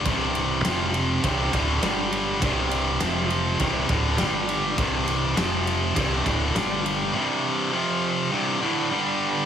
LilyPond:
<<
  \new Staff \with { instrumentName = "Distorted electric guitar" } { \clef bass \time 4/4 \key f \dorian \tempo 4 = 102 <c, g, c>4 <f, c f>4 <c, g, c>8 <d, a, d>8 <g, d g>4 | <c, g, c>4 <f, c f>4 <c, g, c>8 <d, a, d>8 <g, d g>4 | <c, g, c>4 <f, c f>4 <c, g, c>8 <d, a, d>8 <g, d g>4 | <c, g, c>4 <f, c f>4 <c, g, c>8 <d, a, d>8 <g, d g>4 | }
  \new Staff \with { instrumentName = "Distorted electric guitar" } { \clef bass \time 4/4 \key f \dorian <c, g, c>4 <f, c f>4 <c, g, c>8 <d, a, d>8 <g, d g>4 | <c, g, c>4 <f, c f>4 <c, g, c>8 <d, a, d>8 <g, d g>4 | <c, g, c>4 <f, c f>4 <c, g, c>8 <d, a, d>8 <g, d g>4 | <c, g, c>4 <f, c f>4 <c, g, c>8 <d, a, d>8 <g, d g>4 | }
  \new Staff \with { instrumentName = "Fingered electric bass" } { \clef bass \time 4/4 \key f \dorian c,,4 f,,4 c,,8 d,,8 g,,4 | c,,4 f,,4 c,,8 d,,8 g,,4 | c,,4 f,,4 c,,8 d,,8 g,,4 | r1 | }
  \new DrumStaff \with { instrumentName = "Drums" } \drummode { \time 4/4 <bd cymr>8 cymr8 <cymr sn>8 cymr8 <bd cymr>8 <bd cymr>8 <cymr sn>8 cymr8 | <bd cymr>8 cymr8 <cymr sn>8 cymr8 <bd cymr>8 <bd cymr>8 <cymr sn>8 cymr8 | <bd cymr>8 cymr8 <cymr sn>8 cymr8 <bd cymr>8 <bd cymr>8 <cymr sn>8 cymr8 | r4 r4 r4 r4 | }
>>